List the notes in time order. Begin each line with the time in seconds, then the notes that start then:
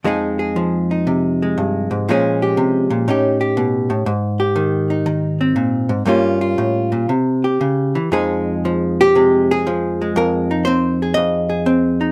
0.04 F2 F3 G#3 D#4 G#4
0.39 G#4
0.56 F3
0.91 D#4
1.07 C3
1.42 G#3
1.58 G2
1.91 G#2
2.09 A#2 F3 G#3 C#4 G#4
2.42 G4
2.57 C3
2.90 A#2
3.08 A2 C#4 D#4 G4
3.41 G4
3.57 B2
3.90 A2
4.06 G#2
4.40 G4
4.56 D#3
4.90 D#4
5.06 D#3
5.41 C4
5.56 A#2
5.89 G#2
6.05 G2 G3 A#3 C#4 F4
6.41 F4
6.58 A2
6.92 A#2
7.09 C3
7.44 G4
7.61 C#3
7.95 E3
8.12 F2 F3 G#3 D#4 G#4
8.65 F3
9.01 G4
9.15 C3 G#3
9.51 G#4
9.67 F3
10.02 G#3
10.16 F2 A#4
10.51 D#4
10.65 C4 C5
11.02 G#4
11.14 F2 D#5
11.49 G#4
11.66 C4
12.01 D#4